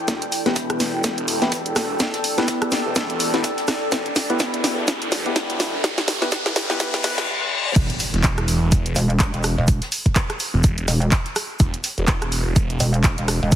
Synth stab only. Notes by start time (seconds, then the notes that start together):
0.46 B3 E4 G4 B4
1.42 B3 E4 G4 B4
2.38 B3 E4 G4 B4
3.34 B3 E4 G4 B4
4.30 B3 E4 G4 B4
5.26 B3 E4 G4 B4
6.22 B3 E4 G4 B4
6.70 B3 E4 G4 B4
6.80 B3 E4 G4 B4
7.04 B3 E4 G4 B4